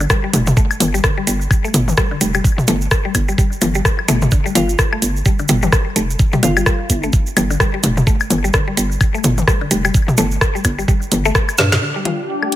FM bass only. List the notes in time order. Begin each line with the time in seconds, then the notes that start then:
0.33 F1
0.80 G1
1.27 G1
1.74 G1
2.21 F1
2.68 G1
3.15 G1
3.62 G1
4.08 G1
4.55 G1
5.02 G1
5.49 G1
5.96 F1
6.43 G1
6.90 G1
7.37 G1
7.84 F1
8.30 G1
8.77 G1
9.24 G1
9.71 F1
10.18 G1
10.65 G1
11.12 G1
11.59 G2